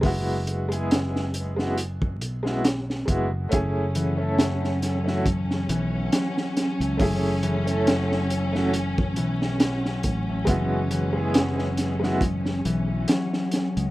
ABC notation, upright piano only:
X:1
M:4/4
L:1/16
Q:"Swing 16ths" 1/4=69
K:F#m
V:1 name="Upright piano"
[G,B,EF]3 [G,B,EG]4 [G,B,EF] z3 [G,B,EF] z2 [G,B,EF] z | [A,CEG]3 [A,CEA]4 [A,CEF] z8 | [A,CEG]3 [A,CEA]4 [A,CEF] z8 | [G,B,EF]3 [G,B,EG]4 [G,B,EF] z8 |]